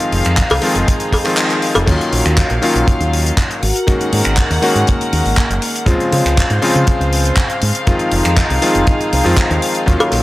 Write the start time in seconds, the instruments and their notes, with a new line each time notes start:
Already playing: electric grand piano D#3 F3 G#3 C4 F4, string section D#4 G#4 F5
0.00 closed hi-hat
0.12 fingered electric bass F1, open hi-hat
0.25 fingered electric bass F2, finger snap, closed hi-hat
0.37 kick, clap, closed hi-hat
0.50 fingered electric bass C2, open hi-hat, cowbell
0.62 electric grand piano D#3 F3 G#3 C4 F4, open hi-hat
0.75 fingered electric bass F1, closed hi-hat
0.88 kick, closed hi-hat
1.00 closed hi-hat
1.13 kick, open hi-hat, cowbell
1.24 electric grand piano D#3 F3 G#3 C4 F4, finger snap, open hi-hat
1.37 clap, closed hi-hat
1.50 clap, closed hi-hat
1.62 open hi-hat
1.75 fingered electric bass F1, closed hi-hat, cowbell
1.86 fingered electric bass D#2, electric grand piano D#3 F#3 A#3 C#4 F4, string section F#3 F5, kick, closed hi-hat, crash
2.01 closed hi-hat
2.13 fingered electric bass A#1, open hi-hat
2.26 fingered electric bass D#2, finger snap, closed hi-hat
2.38 kick, clap, closed hi-hat
2.50 fingered electric bass A#1, closed hi-hat
2.62 electric grand piano D#3 F#3 A#3 C#4 F4, open hi-hat
2.75 fingered electric bass A#1, closed hi-hat
2.88 kick, closed hi-hat
3.01 fingered electric bass D#2, closed hi-hat
3.13 open hi-hat
3.26 closed hi-hat
3.37 kick, clap, closed hi-hat
3.51 closed hi-hat
3.62 fingered electric bass G#1, vibraphone F#4, string section A#4 F#5, open hi-hat
3.75 vibraphone F#4, closed hi-hat
3.87 electric grand piano D#3 G#3 A#3 C#4 F#4, vibraphone D#4, kick, closed hi-hat
4.01 closed hi-hat
4.13 fingered electric bass G#2, open hi-hat
4.25 fingered electric bass G#1, finger snap, closed hi-hat
4.37 kick, clap, closed hi-hat
4.50 fingered electric bass D#2, open hi-hat
4.62 electric grand piano D#3 G#3 A#3 C#4 F#4, open hi-hat
4.75 fingered electric bass G#2, vibraphone A#3, closed hi-hat
4.87 vibraphone A#3, kick, closed hi-hat
5.01 closed hi-hat
5.12 fingered electric bass D#2, vibraphone A#3, open hi-hat
5.25 fingered electric bass G#1, open hi-hat
5.37 kick, clap, closed hi-hat
5.50 fingered electric bass F#1, closed hi-hat
5.62 open hi-hat
5.76 closed hi-hat
5.86 fingered electric bass C#2, electric grand piano C#3 F3 G#3 C4 F4, string section C5 F5, kick, closed hi-hat
6.00 closed hi-hat
6.12 fingered electric bass C#3, open hi-hat
6.25 fingered electric bass C#2, finger snap, closed hi-hat
6.37 kick, clap, closed hi-hat
6.50 fingered electric bass G#2, closed hi-hat
6.62 electric grand piano C#3 F3 G#3 C4 F4, open hi-hat
6.75 fingered electric bass C#3, closed hi-hat
6.87 kick, closed hi-hat
7.00 fingered electric bass C#2, closed hi-hat
7.13 open hi-hat
7.25 closed hi-hat
7.37 kick, clap, closed hi-hat
7.50 closed hi-hat
7.62 fingered electric bass G#2, open hi-hat
7.75 closed hi-hat
7.87 electric grand piano D#3 F3 G#3 C4 F4, string section D#4 G#4, kick, closed hi-hat
7.99 closed hi-hat
8.12 fingered electric bass F1, open hi-hat
8.25 fingered electric bass F2, finger snap, closed hi-hat
8.37 kick, clap, closed hi-hat
8.50 fingered electric bass C2, open hi-hat
8.62 electric grand piano D#3 F3 G#3 C4 F4, open hi-hat
8.75 fingered electric bass F1, closed hi-hat
8.87 kick, closed hi-hat
9.01 closed hi-hat
9.13 fingered electric bass C2, open hi-hat
9.24 fingered electric bass F2, electric grand piano D#3 F3 G#3 C4 F4, open hi-hat
9.37 kick, clap
9.51 fingered electric bass D#2, closed hi-hat
9.62 open hi-hat
9.75 closed hi-hat
9.86 fingered electric bass D#2, electric grand piano D#3 F#3 A#3 C#4 F4, string section F#3 C#4, kick, closed hi-hat
10.00 closed hi-hat, cowbell
10.12 fingered electric bass A#1, open hi-hat, ride